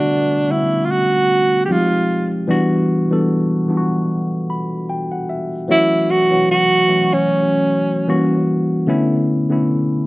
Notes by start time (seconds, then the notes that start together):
Already playing: D3 G3 A3 B3 D4 F#4
0.49 D3 G3 A3 B3 C#4 E4
0.58 D4
0.85 F4
0.91 F#4
1.65 F3 G4
1.69 G3 C4 D#4 F4 G4
1.75 G#3
2.47 E3 G3 B3 D4 F#4
3.11 E3 G3 B3 D4 A4
3.68 E3 G3 B3 D4 F4
3.77 F#4
4.50 B5
4.90 G5
5.12 F#5
5.29 E5
5.68 E3 F#3 A3 C#4 E4 F#4
6.11 F#4
6.30 E3 F#3 A3 C#4 F#4
6.51 F#4
6.88 E3 F#3 A3 C#4 F#4
7.14 C#4
8.07 E3 G3 A#3 C#4 F#4
8.87 D3 A3 B3 C#4 E4
9.49 D3 A3 B3 C#4 E4